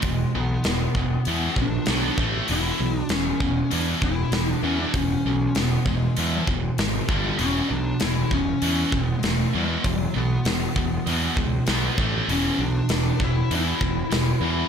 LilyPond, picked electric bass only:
\new Staff \with { instrumentName = "Picked electric bass" } { \clef bass \time 4/4 \key e \mixolydian \tempo 4 = 98 e,,8 b,,8 e,,8 e,,8 e,8 ais,,8 b,,8 a,,8 | e,,8 b,,8 e,,8 e,,8 e,8 e,,8 e,,8 e,8 | e,,8 b,,8 e,,8 e,,8 e,8 e,,8 gis,,8 g,,8 | e,,8 b,,8 e,,8 e,,8 e,8 e,,8 e,,8 e,8 |
e,,8 b,,8 e,,8 e,,8 e,8 cis,8 b,,8 a,,8 | e,,8 b,,8 e,,8 e,,8 e,8 e,,8 e,,8 e,8 | }